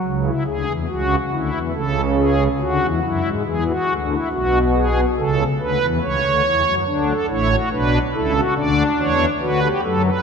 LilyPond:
<<
  \new Staff \with { instrumentName = "Pipe organ" } { \time 4/4 \key d \major \tempo 4 = 70 << { r1 | r1 | r16 a'16 cis''8 b'8 a'8 d''8 cis''8 b'8 a'8 | } \\ { r16 e'16 gis'8 fis'8 e'8 a'8 gis'8 fis'8 e'8 | gis'16 fis'8 e'16 fis'8 gis'8 a'8 b'8 cis''4 | d'8 e'16 fis'16 d'8 e'16 fis'16 d'4 fis'16 g'16 r16 b'16 | } >> }
  \new Staff \with { instrumentName = "Pipe organ" } { \clef bass \time 4/4 \key d \major <cis, cis>8 <d, d>16 <e, e>16 <cis, cis>8 <d, d>16 <e, e>16 <cis, cis>4 <d, d>16 <e, e>16 <fis, fis>16 <gis, gis>16 | <e, e>8 <d, d>8 <b,, b,>4 <cis, cis>8 <d, d>16 <e, e>16 <cis, cis>16 <d, d>16 <e, e>16 <fis, fis>16 | <d, d>8 <a,, a,>8 <b,, b,>8 <cis, cis>8 <d, d>8 <e, e>8 <d, d>8 <fis, fis>8 | }
>>